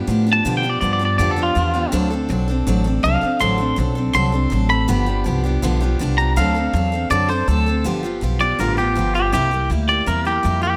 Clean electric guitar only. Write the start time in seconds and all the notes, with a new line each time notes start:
0.33 A5
0.57 G5
0.70 D5
0.81 D5
0.93 D5
1.05 D5
1.18 D5
1.31 A4
1.43 F4
3.04 F5
3.41 C6
4.15 C6
4.70 B5
6.18 A#5
6.37 F5
7.11 D5
7.29 C5
7.48 A4
8.41 D5
8.60 A#4
8.78 G4
9.15 G4
9.34 G4
9.89 D5
10.07 A#4
10.27 G4
10.63 G4